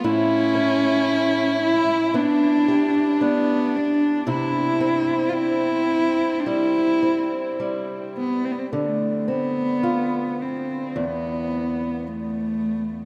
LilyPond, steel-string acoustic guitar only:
\new Staff \with { instrumentName = "Steel-string acoustic guitar" } { \time 4/4 \key d \dorian \tempo 4 = 55 <a, e'>8 cis'4. b8 g'8 d'4 | <c e'>8 c'4. g8 c'8 g4 | d8 c'8 f'4 e,2 | }